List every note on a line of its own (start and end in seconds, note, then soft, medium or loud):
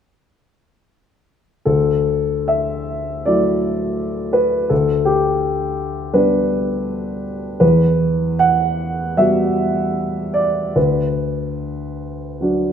1.65 4.66 D2 soft
1.65 2.49 A4 medium
2.48 3.25 E5 medium
3.26 4.67 F#3 soft
3.26 4.67 A3 soft
3.26 4.67 E4 soft
3.26 4.34 D5 medium
4.33 4.70 B4 medium
4.69 7.58 D2 soft
4.69 5.07 A4 soft
5.05 6.14 G4 medium
6.14 7.57 G3 soft
6.14 7.58 B3 soft
6.14 7.58 D4 soft
6.14 7.24 B4 medium
7.60 10.71 E2 soft
7.60 8.41 B4 medium
8.39 9.17 F#5 medium
9.17 10.72 G3 soft
9.17 10.72 B3 soft
9.17 10.72 F#4 soft
9.17 10.35 E5 medium
10.34 10.75 D5 medium
10.76 12.72 D2 soft
10.76 12.72 B4 soft
12.41 12.72 F#3 soft
12.41 12.72 D4 soft
12.41 12.72 F#4 soft